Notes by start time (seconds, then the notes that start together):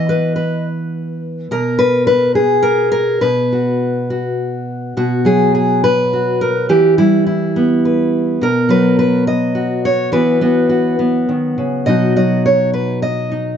Already playing: E3 B3 D#5
0.09 B4
0.36 B4
1.51 B2 A#4
1.79 B4
2.07 B4
2.35 G#4
2.63 A#4
2.92 A#4
3.21 B2 B4
3.52 F#4
4.10 F#4
4.97 B2 F#4
5.25 F#3 G#4
5.55 G#4
5.84 B4
6.13 F#4
6.41 A#4
6.69 E3 G4
6.98 G3 E4
7.27 E4
7.56 B3
7.85 B4
8.41 B2 A#4
8.69 F#3 B4
8.99 B4
9.27 D#5
9.55 F#4
9.85 C#5
10.12 E3 B3 F#4 B4
10.41 B3 F#4
10.69 F#4
10.99 B3
11.29 D#3
11.58 C#3
11.86 B2 F#3 D#4 F#4 D#5
12.16 F#3 D#5
12.46 C#5
12.74 B4
13.02 D#5
13.32 D#4